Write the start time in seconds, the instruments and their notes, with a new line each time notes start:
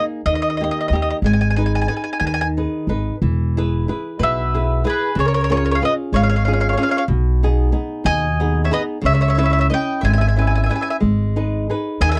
Already playing: nylon-string guitar A#3 D#4 G#4
0.26 upright bass D#2, nylon-string guitar D#3, mandolin D#5
0.35 mandolin D#5
0.42 mandolin D#5
0.50 mandolin D#5
0.57 nylon-string guitar A#3 D#4, mandolin D#5
0.61 nylon-string guitar G4, mandolin D#5
0.71 mandolin D#5
0.81 mandolin D#5
0.88 upright bass D#2, mandolin D#5
0.92 nylon-string guitar A#3 D#4 G4, mandolin D#5
1.02 mandolin D#5
1.11 mandolin D#5
1.22 upright bass G#1, nylon-string guitar G#3, mandolin G#5
1.33 mandolin G#5
1.41 mandolin G#5
1.50 mandolin G#5
1.56 nylon-string guitar D#4 G#4 B4, mandolin G#5
1.66 mandolin G#5
1.75 mandolin G#5
1.82 mandolin G#5
1.88 nylon-string guitar D#4 G#4 B4, mandolin G#5
1.97 mandolin G#5
2.04 mandolin G#5
2.13 mandolin G#5
2.20 upright bass D#2, nylon-string guitar D#3, mandolin G#5
2.27 mandolin G#5
2.34 mandolin G#5
2.41 mandolin G#5
2.57 nylon-string guitar D#4 G#4 B4
2.87 upright bass G#1, nylon-string guitar D#4 G#4 B4
3.22 upright bass E1, nylon-string guitar E3
3.57 nylon-string guitar E4 G#4 B4
3.88 nylon-string guitar E4 G#4 B4
4.19 upright bass B1, nylon-string guitar B2, mandolin B4 E5
4.54 nylon-string guitar E4 G#4 B4
4.84 nylon-string guitar E4 G#4 B4, mandolin G#4
4.90 mandolin B4
5.15 upright bass C#2, nylon-string guitar C#3, mandolin G#4
5.20 mandolin C#5
5.25 mandolin A#4 C#5
5.34 mandolin A#4 C#5
5.41 mandolin A#4 C#5
5.50 nylon-string guitar C#4 F4 G#4, mandolin A#4 C#5
5.56 mandolin A#4 C#5
5.65 mandolin A#4 C#5
5.71 mandolin A#4 C#5 F5
5.81 nylon-string guitar C#4 F4 G#4, mandolin B4
5.85 mandolin D#5
6.12 upright bass G#1, nylon-string guitar G#3, mandolin C#5 F5
6.23 mandolin C#5 F5
6.29 mandolin C#5 F5
6.36 mandolin C#5 F5
6.45 nylon-string guitar C#4 F4 G#4, mandolin C#5 F5
6.53 mandolin C#5 F5
6.60 mandolin C#5 F5
6.69 mandolin C#5 F5
6.77 nylon-string guitar C#4 F4 G#4, mandolin F5
6.82 mandolin C#5 F5
6.89 mandolin C#5 F5
6.97 mandolin C#5 F5
7.08 upright bass B1, nylon-string guitar B2
7.43 nylon-string guitar B3 D#4 G#4
7.72 nylon-string guitar B3 D#4 G#4
8.04 upright bass D#2, nylon-string guitar B2, mandolin D#5 G#5
8.40 nylon-string guitar B3 D#4 G#4
8.64 mandolin C#5 E5
8.71 nylon-string guitar B3 D#4 G#4, mandolin B4 D#5
9.02 upright bass C#2, nylon-string guitar C#3, mandolin C#5
9.06 mandolin E5
9.13 mandolin C#5 E5
9.21 mandolin C#5 E5
9.28 mandolin C#5 E5
9.35 nylon-string guitar C#4 E4 B4, mandolin C#5 E5
9.43 mandolin C#5 E5
9.50 mandolin C#5 E5
9.59 mandolin C#5 E5
9.70 nylon-string guitar C#4 E4 B4, mandolin D#5 G5
10.01 upright bass G#1, nylon-string guitar G#3, mandolin E5 G#5
10.10 mandolin E5 G#5
10.18 mandolin E5 G#5
10.27 mandolin E5 G#5
10.36 nylon-string guitar C#4 E4 B4, mandolin E5 G#5
10.42 mandolin E5
10.47 mandolin E5 G#5
10.55 mandolin E5 G#5
10.64 mandolin E5 G#5
10.69 nylon-string guitar C#4 E4 B4, mandolin E5 G#5
10.76 mandolin G#5
10.81 mandolin E5 G#5
10.90 mandolin E5 G#5
11.00 upright bass G#1, nylon-string guitar G#3
11.36 nylon-string guitar D#4 G#4 B4
11.70 nylon-string guitar D#4 G#4 B4
12.01 upright bass D#2, nylon-string guitar D#3, mandolin D#5 G#5
12.09 mandolin E5 G#5
12.15 mandolin E5